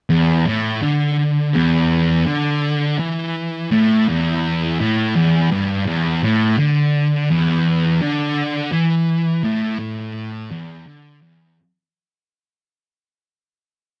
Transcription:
0.10 0.45 E2 loud
0.46 0.81 A2 loud
0.82 1.53 D3 loud
1.54 2.25 E2 loud
2.26 2.97 D3 loud
2.99 3.70 E3 loud
3.71 4.06 A2 loud
4.08 4.78 E2 loud
4.79 5.14 A2 loud
5.15 5.49 E2 loud
5.51 5.86 G2 loud
5.86 6.21 E2 loud
6.23 6.57 A2 loud
6.58 7.28 D3 loud
7.31 8.00 E2 loud
8.01 8.71 D3 loud
8.72 9.42 E3 loud
9.44 9.78 A2 loud
9.79 10.49 A2 loud
10.51 10.85 E2 loud
10.86 11.20 D3 loud
11.21 11.56 E2 loud

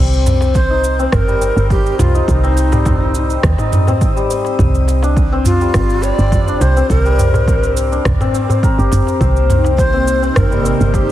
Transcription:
0.00 1.07 C2 loud
0.00 0.99 C4 medium
0.00 0.76 D4 medium
0.13 shaker soft
0.26 mid tom medium
0.26 darbuka ka medium
0.26 shaker medium
0.41 darbuka ka soft
0.41 darbuka tek medium
0.41 shaker soft
0.55 1.15 C5 loud
0.55 kick medium
0.55 shaker soft
0.70 2.14 D#4 medium
0.84 darbuka tek soft
0.84 shaker medium
0.99 1.41 C4 medium
0.99 shaker soft
1.12 1.50 G1 medium
1.12 1.70 A#4 medium
1.12 kick loud
1.12 cross-stick medium
1.12 mid tom medium
1.12 shaker soft
1.28 2.71 G3 medium
1.28 shaker soft
1.41 2.43 C4 medium
1.41 shaker medium
1.56 1.93 G1 loud
1.56 shaker soft
1.70 1.97 G4 medium
1.70 kick loud
1.70 shaker soft
1.86 shaker soft
1.99 2.21 C2 medium
1.99 2.26 F4 medium
1.99 mid tom medium
1.99 darbuka tek medium
1.99 shaker medium
2.15 3.58 D#4 medium
2.15 shaker soft
2.28 3.37 C2 loud
2.28 3.40 D#4 medium
2.28 2.33 F4 medium
2.28 kick medium
2.28 shaker soft
2.43 2.85 C4 loud
2.43 shaker soft
2.57 darbuka ka medium
2.57 shaker medium
2.72 4.15 G3 medium
2.72 darbuka ka soft
2.72 darbuka tek medium
2.72 darbuka dum medium
2.72 shaker soft
2.85 3.87 C4 medium
2.85 kick medium
2.85 mid tom medium
2.85 shaker soft
3.15 shaker medium
3.30 shaker soft
3.43 3.55 D#2 medium
3.43 kick loud
3.43 cross-stick medium
3.43 shaker soft
3.58 5.09 D#4 medium
3.58 darbuka tek medium
3.58 darbuka dum medium
3.58 shaker soft
3.72 mid tom medium
3.72 darbuka ka soft
3.72 shaker medium
3.87 4.30 C4 medium
3.87 darbuka dum medium
3.87 shaker soft
4.01 kick loud
4.01 shaker soft
4.16 4.64 G3 medium
4.16 shaker soft
4.30 5.32 C4 medium
4.30 shaker medium
4.45 darbuka ka medium
4.45 shaker soft
4.59 5.68 C2 loud
4.59 kick loud
4.59 mid tom medium
4.59 shaker soft
4.75 shaker soft
4.88 darbuka ka medium
4.88 shaker medium
5.03 6.47 D4 medium
5.03 darbuka ka soft
5.03 darbuka tek medium
5.03 shaker soft
5.17 kick medium
5.17 shaker soft
5.32 5.74 C4 medium
5.45 6.04 F4 medium
5.45 mid tom medium
5.45 darbuka tek soft
5.45 shaker medium
5.61 6.95 G3 medium
5.61 shaker soft
5.74 6.12 G1 medium
5.74 kick loud
5.74 cross-stick medium
5.74 shaker soft
5.90 shaker soft
6.03 6.63 D5 loud
6.03 shaker medium
6.19 6.55 G1 medium
6.19 shaker soft
6.32 kick loud
6.32 mid tom medium
6.32 shaker soft
6.48 7.91 D4 medium
6.48 shaker soft
6.61 6.82 C2 medium
6.61 6.89 C5 medium
6.61 darbuka tek medium
6.61 shaker medium
6.77 7.18 C4 medium
6.77 shaker soft
6.90 7.99 C2 medium
6.90 7.02 A4 medium
6.90 kick medium
6.90 shaker soft
7.02 9.26 G3 medium
7.02 7.72 A#4 medium
7.02 shaker soft
7.19 8.20 C4 medium
7.19 mid tom medium
7.19 darbuka ka medium
7.19 shaker medium
7.34 darbuka ka soft
7.34 darbuka tek medium
7.34 darbuka dum medium
7.34 shaker soft
7.48 kick loud
7.48 shaker soft
7.63 shaker soft
7.77 shaker medium
7.92 11.12 D4 medium
7.92 shaker soft
8.05 8.16 C2 medium
8.05 kick loud
8.05 cross-stick medium
8.05 mid tom medium
8.05 shaker soft
8.20 8.34 C4 medium
8.20 darbuka tek medium
8.20 darbuka dum medium
8.20 shaker soft
8.34 8.49 C4 medium
8.34 darbuka ka soft
8.34 shaker medium
8.49 9.20 C4 medium
8.49 darbuka dum medium
8.49 shaker soft
8.63 11.12 A#4 medium
8.63 kick loud
8.63 shaker soft
8.78 8.88 G1 medium
8.78 11.12 G4 medium
8.78 shaker soft
8.92 9.03 G1 medium
8.92 mid tom medium
8.92 darbuka tek medium
8.92 shaker medium
9.07 darbuka ka medium
9.07 shaker soft
9.20 10.30 C2 loud
9.20 11.12 C3 medium
9.20 11.12 A#3 medium
9.20 9.93 C4 medium
9.20 11.12 D#4 medium
9.20 kick medium
9.20 shaker soft
9.36 shaker soft
9.50 mid tom medium
9.50 darbuka ka medium
9.50 shaker medium
9.64 darbuka ka soft
9.64 darbuka tek medium
9.64 shaker soft
9.78 10.37 C5 loud
9.78 kick medium
9.78 shaker soft
9.93 10.22 C4 medium
10.07 darbuka tek soft
10.07 shaker medium
10.22 10.64 C4 medium
10.22 shaker soft
10.36 10.73 G1 medium
10.36 10.96 A#4 medium
10.36 kick loud
10.36 cross-stick medium
10.36 mid tom medium
10.36 shaker soft
10.51 11.12 G3 medium
10.51 shaker soft
10.64 11.12 C4 medium
10.64 shaker medium
10.80 11.12 G1 loud
10.80 shaker soft
10.94 11.12 G4 medium
10.94 kick medium
10.94 shaker soft

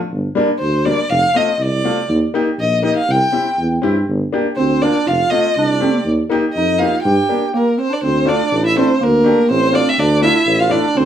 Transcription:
0.11 0.26 G1 medium
0.35 0.48 G3 medium
0.35 0.48 A#3 medium
0.35 0.49 D4 medium
0.59 0.91 D2 medium
0.59 0.87 C5 medium
0.85 0.98 G3 medium
0.85 0.98 A#3 soft
0.85 0.98 D4 medium
0.85 1.11 D5 medium
1.10 1.25 F1 medium
1.10 1.38 F5 loud
1.34 1.47 A3 medium
1.34 1.47 C4 medium
1.34 1.48 F4 medium
1.34 1.55 D#5 medium
1.55 1.63 D#5 medium
1.59 1.89 C2 medium
1.59 2.11 D5 medium
1.84 1.97 A3 medium
1.84 1.97 C4 medium
1.84 1.97 F4 medium
2.09 2.24 D#2 loud
2.34 2.47 A#3 medium
2.34 2.47 D#4 medium
2.34 2.47 G4 medium
2.59 2.89 A#1 medium
2.59 2.83 D#5 medium
2.82 2.96 A#3 medium
2.82 2.96 D#4 medium
2.82 2.96 G4 medium
2.82 2.96 D#5 medium
2.97 3.12 F5 medium
3.09 3.24 C2 loud
3.09 3.59 G5 medium
3.32 3.45 C4 medium
3.32 3.46 E4 medium
3.32 3.46 G4 medium
3.58 3.81 E2 medium
3.82 4.05 G2 medium
3.82 3.95 C4 medium
3.82 3.96 E4 medium
3.82 3.96 G4 medium
4.09 4.23 G1 medium
4.32 4.45 A#3 medium
4.32 4.45 D4 medium
4.32 4.46 G4 medium
4.56 4.87 D2 medium
4.56 4.86 C4 medium
4.56 4.84 C5 medium
4.82 4.95 A#3 medium
4.82 4.95 D4 medium
4.82 5.08 D4 medium
4.82 4.95 F4 medium
4.82 5.09 D5 medium
5.07 5.22 F1 medium
5.07 5.56 F4 medium
5.07 5.32 F5 medium
5.30 5.44 A3 medium
5.30 5.44 C4 medium
5.30 5.45 F4 medium
5.30 5.56 D#5 medium
5.54 5.86 C2 medium
5.54 6.03 D4 medium
5.54 6.05 D5 medium
5.80 5.93 A3 medium
5.80 5.93 C4 medium
5.80 5.94 G4 medium
6.05 6.20 D#2 medium
6.29 6.42 A#3 medium
6.29 6.43 D#4 medium
6.29 6.43 G4 medium
6.53 6.85 F2 medium
6.53 6.80 D#5 medium
6.57 6.81 D#4 medium
6.79 6.92 A#3 medium
6.79 6.92 D#4 medium
6.79 7.07 F4 medium
6.79 6.93 G4 medium
6.79 7.02 F5 medium
7.02 7.20 G2 loud
7.02 7.53 G4 medium
7.02 7.49 G5 medium
7.29 7.41 A#3 medium
7.29 7.41 D4 medium
7.29 7.42 G4 medium
7.54 7.79 A#3 medium
7.54 7.78 A#4 medium
7.78 7.92 C4 medium
7.78 7.95 C5 medium
7.90 8.03 D4 medium
7.90 8.03 D5 medium
8.03 8.32 D2 medium
8.03 8.30 C4 medium
8.03 8.30 C5 medium
8.25 8.38 A3 medium
8.25 8.39 D4 medium
8.25 8.65 D4 medium
8.25 8.39 F4 medium
8.25 8.65 D5 medium
8.51 8.81 A1 medium
8.64 8.78 E4 medium
8.64 8.77 E5 medium
8.76 8.89 A3 medium
8.76 9.00 C4 medium
8.76 8.89 D4 medium
8.76 8.89 E4 medium
8.76 9.05 C5 medium
9.01 9.31 D2 medium
9.01 9.52 A#3 medium
9.01 9.51 A#4 medium
9.24 9.37 A3 medium
9.24 9.37 D4 medium
9.24 9.38 G4 medium
9.50 9.79 A1 medium
9.50 9.98 C4 medium
9.50 9.76 C5 loud
9.72 9.85 A3 medium
9.72 9.86 D4 medium
9.72 9.86 F4 medium
9.72 9.90 D5 medium
9.89 10.01 E5 medium
9.99 10.28 D2 medium
9.99 10.21 D4 medium
9.99 10.22 D5 loud
10.21 10.34 A3 medium
10.21 10.34 D4 medium
10.21 10.57 E4 medium
10.21 10.35 F4 medium
10.21 10.61 E5 loud
10.46 10.76 A1 loud
10.59 10.74 F4 medium
10.59 10.73 F5 medium
10.69 10.83 A3 medium
10.69 10.83 D4 medium
10.69 10.98 D4 medium
10.69 10.83 E4 medium
10.69 10.87 D5 medium
10.87 10.98 D5 medium
10.95 11.05 D2 medium
10.95 11.05 C4 medium
10.95 11.05 C5 medium

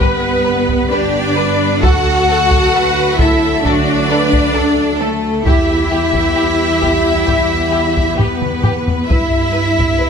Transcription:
0.00 0.81 G1 medium
0.00 1.79 G3 medium
0.00 1.79 B3 medium
0.00 0.90 B3 medium
0.00 0.91 B3 medium
0.00 0.91 B4 medium
0.00 0.92 B4 medium
0.00 0.09 B4 medium
0.00 taiko medium
0.45 0.53 B4 soft
0.69 taiko medium
0.91 1.72 G1 medium
0.91 1.81 D4 medium
0.91 1.83 D4 medium
0.91 1.37 G4 medium
0.91 1.00 B4 medium
0.91 1.82 D5 medium
1.36 1.44 B4 soft
1.36 1.83 B4 medium
1.82 2.63 D2 medium
1.82 5.30 F#3 medium
1.82 5.30 A3 medium
1.82 3.19 F#4 medium
1.82 3.20 F#4 medium
1.82 1.90 A4 medium
1.82 2.72 A4 medium
1.82 3.17 F#5 medium
1.82 taiko medium
2.30 2.38 A4 medium
2.51 taiko medium
2.73 3.54 D2 medium
2.73 2.84 A4 soft
2.73 3.19 B4 medium
3.18 3.65 E4 medium
3.18 3.53 E4 medium
3.18 3.64 A4 medium
3.18 3.28 A4 medium
3.18 3.65 E5 medium
3.18 taiko medium
3.64 4.45 D2 medium
3.64 4.98 D4 medium
3.64 4.99 D4 medium
3.64 4.11 F#4 medium
3.64 3.74 A4 medium
3.64 5.02 D5 medium
3.64 taiko medium
4.09 4.19 A4 soft
4.09 4.55 B4 medium
4.33 taiko medium
4.55 5.36 D2 medium
4.55 4.63 A4 medium
4.55 5.47 A4 soft
5.00 5.46 A3 medium
5.00 5.47 A3 medium
5.00 5.08 A4 soft
5.00 5.46 A4 medium
5.46 6.26 E2 medium
5.46 8.75 G3 medium
5.46 8.75 B3 medium
5.46 8.15 E4 medium
5.46 8.16 E4 medium
5.46 5.55 G4 soft
5.46 8.62 G4 medium
5.46 8.16 E5 medium
5.46 taiko medium
5.92 6.00 G4 soft
6.14 taiko medium
6.36 7.18 E2 soft
6.36 6.44 G4 soft
6.81 6.89 G4 soft
6.81 taiko medium
7.27 8.09 E2 soft
7.27 7.35 G4 soft
7.27 taiko medium
7.71 7.79 G4 soft
7.97 taiko medium
8.17 9.00 E2 soft
8.17 9.10 B3 medium
8.17 8.25 G4 soft
8.17 9.09 B4 medium
8.17 taiko low-mid medium
8.22 9.12 B3 medium
8.42 taiko mid medium
8.63 8.71 G4 soft
8.63 taiko low-mid medium
8.88 taiko low medium
9.08 9.90 G2 soft
9.08 10.10 G3 medium
9.08 10.10 B3 medium
9.08 10.10 E4 medium
9.08 9.16 B4 soft
9.08 10.10 E5 medium
9.08 taiko medium
9.53 9.61 B4 soft
9.79 taiko medium
9.99 10.10 G2 medium
9.99 10.07 B4 soft

